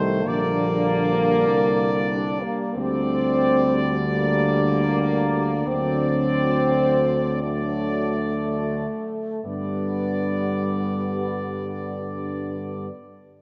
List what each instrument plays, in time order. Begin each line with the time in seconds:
Already playing: tuba C2, euphonium D#3, trombone section G3, french horn section A3, trumpet section C5
0.23 tuba A#1, euphonium D3, trombone section G3, french horn section A#3, trumpet section D5
1.47 tuba C2
2.10 french horn section D4
2.40 french horn section A#3
2.75 tuba D2, euphonium D3, trombone section G3, french horn section C4, trumpet section D5
4.16 french horn section A#3
5.67 tuba D2, euphonium D3, trombone section F#3, french horn section C4, trumpet section D5
7.41 euphonium D3, trombone section F#3, french horn section A3, trumpet section D5
9.43 tuba G2, euphonium D3, trombone section G3, french horn section B3, trumpet section D5